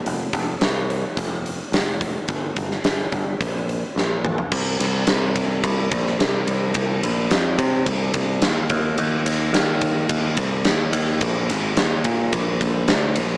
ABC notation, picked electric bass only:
X:1
M:4/4
L:1/8
Q:1/4=108
K:Cm
V:1 name="Picked electric bass" clef=bass
F,,, F,,, C,,2 F,,,2 F,,,2 | G,,, G,,, G,,, G,,, B,,,2 B,,,2 | C,, C,, C,,2 C,, B,,, C,, C,, | C,, B,,, F,, C, C,, C,, E,, E,, |
E,, E,, E,,2 E,, C,, E,, E,, | B,,, A,,, E,, B,, B,,, B,,, D,, B,,, |]